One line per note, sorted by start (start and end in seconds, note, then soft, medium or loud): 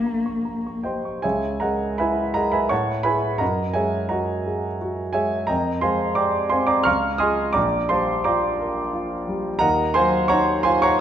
0.00 1.20 A#1 soft
0.00 0.85 A#3 medium
0.00 0.85 G4 soft
0.00 0.17 F5 soft
0.00 0.06 A#5 soft
0.00 0.26 C#6 soft
0.06 0.37 A#5 soft
0.26 0.57 C#6 soft
0.45 0.77 A#5 soft
0.67 0.98 C#6 soft
0.83 1.21 G4 soft
0.83 1.21 C5 soft
0.83 1.21 D#5 soft
0.83 1.23 G5 soft
0.83 1.05 C6 soft
1.05 1.24 C#6 soft
1.22 2.68 C#2 soft
1.22 1.59 G#4 soft
1.22 1.59 C#5 soft
1.22 1.59 E5 soft
1.22 1.61 G#5 medium
1.60 2.22 G#3 soft
1.60 1.96 A#4 soft
1.60 1.96 D#5 soft
1.60 1.97 F#5 medium
1.60 1.98 A#5 medium
1.98 2.58 E4 soft
1.98 2.33 B4 soft
1.98 2.33 E5 medium
1.98 2.33 G#5 medium
1.98 2.35 B5 medium
2.34 2.71 G#4 soft
2.34 2.52 A#4 soft
2.34 2.52 D#5 soft
2.34 2.52 F#5 soft
2.34 2.53 A#5 medium
2.52 2.69 B4 soft
2.52 2.69 E5 medium
2.52 2.69 G#5 soft
2.52 2.70 B5 medium
2.69 3.39 A2 soft
2.69 3.03 C#5 medium
2.69 3.03 F#5 medium
2.69 3.03 A5 medium
2.69 3.05 C#6 medium
3.03 3.37 E4 soft
3.03 3.38 G#4 soft
3.03 3.38 B4 medium
3.03 3.38 E5 soft
3.03 3.38 G#5 medium
3.03 3.40 B5 medium
3.38 5.46 F#2 soft
3.38 3.73 A#4 medium
3.38 3.73 D#5 medium
3.38 3.73 F#5 soft
3.38 3.75 A#5 medium
3.73 4.33 G#3 soft
3.73 4.08 G#4 soft
3.73 4.08 C#5 soft
3.73 4.08 E5 medium
3.73 4.10 G#5 medium
4.09 4.68 F#4 soft
4.09 4.77 A#4 soft
4.09 4.77 D#5 soft
4.09 4.77 F#5 soft
4.09 4.80 A#5 medium
4.46 5.02 G#4 soft
4.82 5.36 F#4 soft
5.13 5.49 G#3 soft
5.13 5.46 G#4 soft
5.13 5.47 C#5 soft
5.13 5.47 E5 medium
5.13 5.48 G#5 medium
5.47 6.83 F2 medium
5.47 5.81 A#4 soft
5.47 5.81 D#5 soft
5.47 5.81 G5 soft
5.47 5.82 A#5 medium
5.81 6.39 G#3 soft
5.81 6.15 C5 medium
5.81 6.15 F5 medium
5.81 6.15 G#5 medium
5.81 6.17 C6 medium
6.15 6.73 G4 soft
6.15 6.49 D5 medium
6.15 6.49 G5 medium
6.15 6.49 A#5 medium
6.15 6.51 D6 medium
6.50 6.87 C4 soft
6.50 6.68 C5 medium
6.50 6.68 F5 medium
6.50 6.68 G#5 medium
6.50 6.68 C6 medium
6.67 6.84 D5 medium
6.67 6.85 G5 medium
6.67 6.84 A#5 medium
6.67 6.85 D6 medium
6.84 7.54 C#2 soft
6.84 7.18 F5 medium
6.84 7.18 A#5 medium
6.84 7.18 C#6 medium
6.84 7.20 F6 medium
7.18 7.53 F4 soft
7.18 7.53 G#4 soft
7.18 7.53 D#5 medium
7.18 7.53 G#5 medium
7.18 7.53 C6 medium
7.18 7.55 D#6 medium
7.53 9.58 A#1 medium
7.53 7.88 D5 medium
7.53 7.88 G5 medium
7.53 7.88 A#5 medium
7.53 7.90 D6 medium
7.89 8.47 G3 soft
7.89 8.23 C5 medium
7.89 8.23 F5 medium
7.89 8.23 A5 medium
7.89 8.25 C6 medium
8.24 8.81 F4 soft
8.24 8.90 D5 medium
8.24 8.90 G5 medium
8.24 8.90 A#5 medium
8.24 8.93 D6 medium
8.60 9.14 A#4 soft
8.93 9.48 F4 soft
9.28 9.62 G3 medium
9.59 11.00 D#2 medium
9.59 9.93 A#4 medium
9.59 9.93 D#5 medium
9.59 9.93 F#5 medium
9.59 9.95 A#5 medium
9.94 10.53 F#3 soft
9.94 10.29 C5 medium
9.94 10.29 F5 medium
9.94 10.29 G#5 medium
9.94 10.31 C6 medium
10.28 10.87 D#4 medium
10.28 10.63 C#5 medium
10.28 10.63 F#5 medium
10.28 10.63 A#5 medium
10.28 10.65 C#6 medium
10.63 11.00 F4 soft
10.63 10.82 C5 medium
10.63 10.82 F5 medium
10.63 10.82 G#5 medium
10.63 10.83 C6 medium
10.82 11.00 C#5 medium
10.82 11.00 F#5 medium
10.82 11.00 A#5 medium
10.82 11.00 C#6 medium